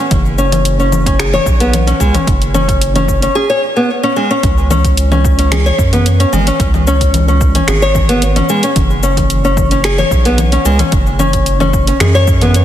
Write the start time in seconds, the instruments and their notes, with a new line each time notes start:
0.00 nylon-string guitar C#4
0.11 analog synth bass F#1, kick, closed hi-hat, low conga, cabasa
0.26 cabasa
0.38 nylon-string guitar C#4, cabasa
0.52 closed hi-hat, low conga, cabasa
0.65 closed hi-hat, cabasa
0.80 nylon-string guitar C#4, cabasa
0.92 low conga, cabasa
1.06 nylon-string guitar C#4, kick, closed hi-hat, cabasa
1.19 nylon-string guitar G#4, finger snap, closed hi-hat, cabasa
1.34 nylon-string guitar C#5, low conga, cabasa
1.46 analog synth bass B1, kick, cabasa
1.60 nylon-string guitar B3, closed hi-hat, cabasa
1.73 closed hi-hat, low conga, cabasa
1.87 nylon-string guitar C#4, closed hi-hat, cabasa
2.00 analog synth bass C#2, nylon-string guitar G#3, kick, cabasa
2.14 nylon-string guitar C#4, closed hi-hat, low conga, cabasa
2.27 analog synth bass F#1, kick, closed hi-hat, cabasa
2.42 closed hi-hat, cabasa
2.54 nylon-string guitar C#4, low conga, cabasa
2.68 kick, closed hi-hat, cabasa
2.81 closed hi-hat, cabasa
2.96 nylon-string guitar C#4, closed hi-hat, low conga, cabasa
3.08 kick, cabasa
3.22 nylon-string guitar C#4, closed hi-hat, cabasa
3.35 nylon-string guitar G#4
3.50 nylon-string guitar C#5
3.77 nylon-string guitar B3
4.03 nylon-string guitar C#4
4.16 nylon-string guitar G#3
4.31 nylon-string guitar C#4
4.43 analog synth bass C#2, kick, closed hi-hat, cabasa
4.58 cabasa
4.70 nylon-string guitar C#4, low conga, cabasa
4.84 kick, closed hi-hat, cabasa
4.97 closed hi-hat, cabasa
5.12 nylon-string guitar C#4, low conga, cabasa
5.24 kick, cabasa
5.39 nylon-string guitar C#4, closed hi-hat, cabasa
5.52 nylon-string guitar G#4, finger snap, closed hi-hat, low conga, cabasa
5.66 nylon-string guitar C#5, cabasa
5.79 analog synth bass F#2, kick, cabasa
5.93 nylon-string guitar B3, closed hi-hat, low conga, cabasa
6.06 closed hi-hat, cabasa
6.20 nylon-string guitar C#4, closed hi-hat, cabasa
6.33 analog synth bass G#1, nylon-string guitar G#3, low conga, cabasa
6.47 nylon-string guitar C#4, closed hi-hat, cabasa
6.60 analog synth bass C#2, kick, closed hi-hat, cabasa
6.74 low conga, cabasa
6.87 nylon-string guitar C#4, cabasa
7.01 kick, closed hi-hat, cabasa
7.14 closed hi-hat, low conga, cabasa
7.28 nylon-string guitar C#4, cabasa
7.41 kick, cabasa
7.55 nylon-string guitar C#4, closed hi-hat, low conga, cabasa
7.68 analog synth bass G#1, nylon-string guitar G#4, finger snap, closed hi-hat, cabasa
7.82 nylon-string guitar C#5, cabasa
7.95 kick, low conga, cabasa
8.09 nylon-string guitar B3, closed hi-hat, cabasa
8.22 closed hi-hat, cabasa
8.36 nylon-string guitar C#4, closed hi-hat, low conga, cabasa
8.49 nylon-string guitar G#3, cabasa
8.63 nylon-string guitar C#4, closed hi-hat, cabasa
8.76 analog synth bass F#1, kick, closed hi-hat, low conga, cabasa
8.90 cabasa
9.03 nylon-string guitar C#4, cabasa
9.17 kick, closed hi-hat, low conga, cabasa
9.30 closed hi-hat, cabasa
9.45 nylon-string guitar C#4, cabasa
9.57 kick, low conga, cabasa
9.71 nylon-string guitar C#4, closed hi-hat, cabasa
9.84 nylon-string guitar G#4, finger snap, closed hi-hat, cabasa
9.98 nylon-string guitar C#5, low conga, cabasa
10.11 analog synth bass B1, kick, cabasa
10.25 nylon-string guitar B3, closed hi-hat, cabasa
10.38 closed hi-hat, low conga, cabasa
10.52 nylon-string guitar C#4, closed hi-hat, cabasa
10.65 analog synth bass C#2, nylon-string guitar G#3, cabasa
10.79 nylon-string guitar C#4, closed hi-hat, low conga, cabasa
10.92 analog synth bass F#1, kick, closed hi-hat, cabasa
11.07 cabasa
11.19 nylon-string guitar C#4, low conga, cabasa
11.33 kick, closed hi-hat, cabasa
11.46 closed hi-hat, cabasa
11.60 nylon-string guitar C#4, low conga, cabasa
11.73 kick, cabasa
11.87 nylon-string guitar C#4, closed hi-hat, cabasa
12.00 analog synth bass F#2, nylon-string guitar G#4, finger snap, closed hi-hat, low conga, cabasa
12.15 nylon-string guitar C#5, cabasa
12.27 kick, cabasa
12.41 nylon-string guitar B3, closed hi-hat, low conga, cabasa
12.54 closed hi-hat, cabasa